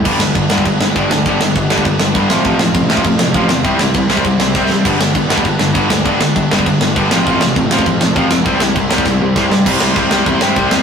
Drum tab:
CC |x---x---x---x---|x---x---x---x---|x---x---x---x---|x---x---x-------|
SD |--o---o---o---o-|--o---o---o---o-|--o---o---o---o-|--o---o---o-o-o-|
BD |o---o--oo---o---|o---o--oo---o---|o---o--oo---o---|o---o--oo---o---|

CC |x---x---x---x---|x---x---x---x---|x---x---x---x---|x---x-----------|
SD |--o---o---o---o-|--o---o---o---o-|--o---o---o---o-|--o---o-o---o-o-|
BD |o---o--oo---o---|o---o--oo---o---|o---o--oo---o---|o---o--oo---o---|

CC |x---x---x---x---|
SD |--o---o---o---o-|
BD |o---o---o---o---|